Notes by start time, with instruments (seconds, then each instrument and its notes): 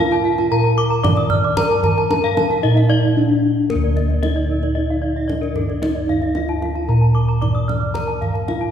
Already playing: kettle gongs A#4
0.00 bronze metallophone F4 F5
0.11 bronze metallophone A5, kendang slap
0.24 bronze metallophone F5
0.38 bronze metallophone A5, kendang slap
0.51 kettle gongs A#2, bronze metallophone A#4 A#5
0.64 bronze metallophone A5
0.78 bronze metallophone D6
0.90 bronze metallophone A#5
1.03 kettle gongs D#4, bronze metallophone D5 D6, kendang high, kendang low
1.17 bronze metallophone D#6, kendang slap
1.30 bronze metallophone F6, kendang low
1.44 bronze metallophone D6, kendang slap
1.57 bronze metallophone A#4 A#5, kettle gongs A#4, kendang high, kendang low
1.71 bronze metallophone A5, kendang slap
1.84 bronze metallophone A#5, kendang low
1.98 bronze metallophone A5, kendang slap
2.10 kettle gongs D#4, bronze metallophone A#4 A#5, kendang high
2.24 bronze metallophone F5, kendang slap
2.37 bronze metallophone A5, kendang high
2.50 bronze metallophone F5, kendang slap
2.63 kettle gongs A#2, bronze metallophone D#4 D#5
2.76 bronze metallophone F5, kendang slap
2.90 bronze metallophone D5
3.17 bronze metallophone D4, kettle gongs D#4
3.70 bronze metallophone A#3 A#4, kettle gongs A#4, kendang low
3.75 kettle gongs D2
3.83 bronze metallophone D5, kendang slap
3.96 bronze metallophone D#5, kendang low
4.10 bronze metallophone D5, kendang slap
4.23 bronze metallophone D#4 D#5, kettle gongs D#4, kendang high
4.36 bronze metallophone D5, kendang slap
4.50 bronze metallophone A#4
4.63 bronze metallophone D5, kendang slap
4.75 bronze metallophone D#4 D#5
4.90 bronze metallophone F5
5.02 bronze metallophone D5
5.16 bronze metallophone D#5
5.28 bronze metallophone D4 D5, kettle gongs D#4, kendang high, kendang low
5.41 bronze metallophone A#4, kendang slap
5.56 bronze metallophone A4, kendang high, kendang low
5.69 bronze metallophone D5, kendang slap
5.82 kettle gongs D#4, bronze metallophone D#4 D#5, kendang high, kendang low
5.95 bronze metallophone D5, kendang slap
6.09 bronze metallophone F5, kendang low
6.22 bronze metallophone D#5, kendang slap
6.35 kettle gongs D#4, bronze metallophone F4 F5, kendang high
6.48 bronze metallophone A5, kendang slap
6.62 bronze metallophone F5, kendang high
6.75 bronze metallophone A5, kendang slap
6.88 kettle gongs A#2, bronze metallophone A#4 A#5
7.01 bronze metallophone A5
7.15 bronze metallophone D6
7.29 bronze metallophone A#5
7.41 kettle gongs D#4, bronze metallophone D5 D6, kendang low
7.55 bronze metallophone D#6, kendang slap
7.68 bronze metallophone F6, kendang high, kendang low
7.80 bronze metallophone D6, kendang slap
7.94 bronze metallophone A#4 A#5, kettle gongs A#4, kendang low
8.08 bronze metallophone A5, kendang slap
8.21 bronze metallophone F5, kendang low
8.34 bronze metallophone A5, kendang slap
8.48 kettle gongs D#4, bronze metallophone F4 F5, kendang high
8.61 bronze metallophone A5, kendang slap